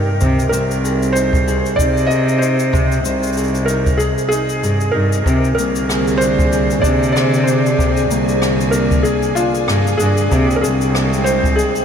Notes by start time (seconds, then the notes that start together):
Already playing: C3 A#3 D#4 G4 A#4
0.21 C3, kick, cabasa
0.39 cabasa
0.49 C2 C4 A#4, cabasa
0.71 cabasa
0.84 G#4, cabasa
1.03 cabasa
1.13 D#4 C5, cabasa
1.33 kick, cabasa
1.47 G#4, cabasa
1.66 cabasa
1.76 C3 D#4 D5, kick, cabasa
1.97 cabasa
2.07 G#4 D#5
2.11 cabasa
2.29 cabasa
2.39 D#4 C5, cabasa
2.59 cabasa
2.73 C3, kick, cabasa
2.92 cabasa
3.05 C2 C4, cabasa
3.23 cabasa
3.27 cabasa
3.33 G#4, cabasa
3.37 cabasa
3.43 cabasa
3.48 cabasa
3.55 cabasa
3.66 D#4 A#4, cabasa
3.87 kick, cabasa
3.98 G#4, cabasa
4.18 cabasa
4.28 D#4 G#4, cabasa
4.49 cabasa
4.63 G2 G#4, cabasa
4.81 cabasa
4.92 G2 D#4 A#4
5.13 cabasa
5.26 C3 D3 A#3 G#4, kick, cabasa
5.44 cabasa
5.55 C2 A#3 A#4
5.59 cabasa
5.76 cabasa
5.89 G#4, cross-stick, cabasa
6.08 cabasa
6.18 D4 C5
6.22 cabasa
6.39 kick, cabasa
6.52 G#4, cabasa
6.71 cabasa
6.82 C3 D4 D5, kick, cabasa
7.03 cabasa
7.12 G#4 D5
7.16 cross-stick, cabasa
7.34 cabasa
7.44 D4 C5
7.48 cabasa
7.66 cabasa
7.79 C3, kick, cabasa
7.97 cabasa
8.10 C2 A#3, cabasa
8.29 cabasa
8.42 G#4, cross-stick, cabasa
8.61 cabasa
8.71 D4 A#4, cabasa
8.91 kick, cabasa
9.03 G#4, cabasa
9.23 cabasa
9.35 D4 F4, cabasa
9.55 cabasa
9.68 G2 G#4, cross-stick, cabasa
9.87 cabasa
9.97 G2 D4 G#4, cabasa
10.17 cabasa
10.31 C3 G#3 G5, kick, cabasa
10.51 cabasa
10.56 A#4
10.61 C2 C4 G#4, cabasa
10.81 cabasa
10.95 cross-stick, cabasa
11.13 cabasa
11.24 D#4 C5, cabasa
11.44 kick, cabasa
11.56 G#4, cabasa
11.75 cabasa